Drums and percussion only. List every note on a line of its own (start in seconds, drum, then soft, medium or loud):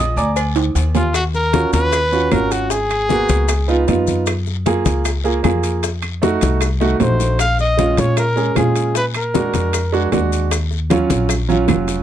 0.17 high conga soft
0.17 short guiro medium
0.17 maracas soft
0.36 cowbell loud
0.36 high conga soft
0.36 low agogo loud
0.36 long guiro medium
0.36 claves medium
0.36 maracas medium
0.56 cowbell medium
0.56 high conga soft
0.56 high timbale medium
0.56 maracas soft
0.75 cowbell medium
0.75 high conga soft
0.75 high timbale medium
0.75 low agogo medium
0.75 short guiro medium
0.75 maracas medium
0.95 cowbell medium
0.95 high conga medium
0.95 low timbale loud
0.95 low agogo medium
0.95 short guiro medium
0.95 maracas soft
1.14 high bongo medium
1.14 high conga soft
1.14 high timbale loud
1.14 claves medium
1.14 maracas medium
1.34 high bongo soft
1.34 high conga soft
1.34 maracas soft
1.53 high bongo medium
1.53 high conga medium
1.53 high timbale medium
1.53 low timbale medium
1.53 short guiro medium
1.53 maracas soft
1.73 high bongo soft
1.73 high conga medium
1.73 high timbale medium
1.73 short guiro medium
1.73 maracas medium
1.92 high bongo medium
1.92 high conga soft
1.92 high timbale medium
1.92 long guiro medium
1.92 claves medium
1.92 maracas medium
2.12 high conga soft
2.12 maracas soft
2.32 high bongo soft
2.32 low bongo medium
2.32 high conga medium
2.32 high timbale medium
2.32 low timbale medium
2.32 short guiro medium
2.32 claves medium
2.32 maracas soft
2.51 high bongo soft
2.51 high conga soft
2.51 high timbale medium
2.51 short guiro medium
2.51 maracas medium
2.70 high bongo medium
2.70 high conga soft
2.70 high timbale medium
2.70 long guiro medium
2.70 maracas medium
2.90 high bongo soft
2.90 high conga soft
2.90 high timbale medium
2.90 claves medium
2.90 maracas soft
3.09 high bongo medium
3.09 high conga medium
3.09 low timbale medium
3.09 short guiro medium
3.09 maracas soft
3.29 high bongo soft
3.29 high conga loud
3.29 high timbale medium
3.29 short guiro medium
3.29 maracas medium
3.48 high bongo medium
3.48 high conga soft
3.48 high timbale loud
3.48 long guiro medium
3.48 claves medium
3.48 maracas medium
3.68 high conga soft
3.68 maracas soft
3.88 high bongo soft
3.88 low bongo medium
3.88 high conga medium
3.88 high timbale medium
3.88 low timbale medium
3.88 short guiro medium
3.88 maracas soft
4.07 high bongo soft
4.07 high conga medium
4.07 short guiro medium
4.07 maracas medium
4.26 high bongo medium
4.26 high conga soft
4.26 high timbale loud
4.26 long guiro medium
4.26 claves medium
4.26 maracas medium
4.46 high bongo soft
4.46 high conga soft
4.46 maracas soft
4.66 high bongo medium
4.66 high conga medium
4.66 high timbale medium
4.66 low timbale medium
4.66 short guiro medium
4.66 maracas soft
4.86 high bongo soft
4.86 high conga medium
4.86 high timbale medium
4.86 short guiro medium
4.86 maracas medium
5.05 high bongo medium
5.05 high conga soft
5.05 high timbale medium
5.05 long guiro medium
5.05 claves medium
5.05 maracas medium
5.25 high conga soft
5.25 maracas soft
5.44 high bongo soft
5.44 low bongo medium
5.44 high conga medium
5.44 high timbale medium
5.44 low timbale medium
5.44 short guiro medium
5.44 claves medium
5.44 maracas soft
5.64 high bongo soft
5.64 high conga soft
5.64 high timbale medium
5.64 short guiro medium
5.64 maracas medium
5.83 high bongo medium
5.83 high conga soft
5.83 high timbale medium
5.83 long guiro medium
5.83 maracas medium
6.02 high bongo soft
6.02 high conga soft
6.02 high timbale medium
6.02 claves medium
6.02 maracas soft
6.22 high bongo medium
6.22 high conga medium
6.22 low timbale medium
6.22 short guiro medium
6.22 maracas soft
6.41 high bongo soft
6.41 high conga medium
6.41 high timbale medium
6.41 short guiro medium
6.41 maracas medium
6.61 high bongo medium
6.61 high conga soft
6.61 high timbale medium
6.61 long guiro medium
6.61 claves medium
6.61 maracas medium
6.81 high bongo medium
6.81 high conga soft
6.81 maracas soft
7.00 low bongo medium
7.00 high conga medium
7.00 high timbale medium
7.00 low timbale medium
7.00 short guiro medium
7.00 maracas soft
7.20 low bongo medium
7.20 short guiro medium
7.20 maracas medium
7.39 high bongo medium
7.39 high conga soft
7.39 high timbale medium
7.39 long guiro medium
7.39 claves medium
7.39 maracas medium
7.59 high bongo soft
7.59 high conga soft
7.59 maracas soft
7.78 high bongo medium
7.78 high conga medium
7.78 high timbale medium
7.78 low timbale medium
7.78 short guiro medium
7.78 maracas soft
7.97 high bongo soft
7.97 high conga medium
7.97 high timbale medium
7.97 short guiro medium
7.97 maracas medium
8.17 high bongo medium
8.17 high conga soft
8.17 high timbale medium
8.17 long guiro medium
8.17 claves medium
8.17 maracas medium
8.37 high conga soft
8.37 maracas soft
8.56 high bongo soft
8.56 low bongo medium
8.56 high conga medium
8.56 high timbale medium
8.56 low timbale medium
8.56 short guiro medium
8.56 claves medium
8.56 maracas soft
8.76 high bongo soft
8.76 high conga soft
8.76 high timbale medium
8.76 short guiro medium
8.76 maracas medium
8.95 high bongo medium
8.95 high conga soft
8.95 high timbale medium
8.95 long guiro medium
8.95 maracas medium
9.14 high bongo soft
9.14 high conga soft
9.14 high timbale medium
9.14 claves medium
9.14 maracas soft
9.34 high bongo medium
9.34 high conga loud
9.34 low timbale medium
9.34 short guiro medium
9.34 maracas soft
9.54 high bongo soft
9.54 high conga medium
9.54 high timbale medium
9.54 short guiro medium
9.54 maracas medium
9.73 high bongo medium
9.73 high conga soft
9.73 high timbale medium
9.73 long guiro medium
9.73 claves medium
9.73 maracas medium
9.94 high conga soft
9.94 maracas soft
10.12 high bongo soft
10.12 low bongo medium
10.12 high conga medium
10.12 high timbale medium
10.12 low timbale medium
10.12 short guiro medium
10.12 maracas soft
10.32 high bongo soft
10.32 short guiro medium
10.32 maracas medium
10.51 high bongo medium
10.51 high conga soft
10.51 high timbale medium
10.51 long guiro medium
10.51 claves medium
10.51 maracas medium
10.71 high bongo soft
10.71 high conga soft
10.71 maracas soft
10.90 high bongo medium
10.90 high conga medium
10.90 high timbale medium
10.90 low timbale medium
10.90 short guiro medium
10.90 maracas soft
11.10 high bongo soft
11.10 high conga medium
11.10 high timbale medium
11.10 short guiro medium
11.10 maracas medium
11.29 high bongo medium
11.29 high conga soft
11.29 high timbale medium
11.29 long guiro medium
11.29 claves medium
11.29 maracas medium
11.49 high conga soft
11.49 maracas soft
11.68 high bongo soft
11.68 low bongo medium
11.68 high conga medium
11.68 high timbale medium
11.68 low timbale medium
11.68 short guiro medium
11.68 claves medium
11.68 maracas soft
11.88 high bongo soft
11.88 high conga soft
11.88 high timbale medium
11.88 short guiro medium
11.88 maracas medium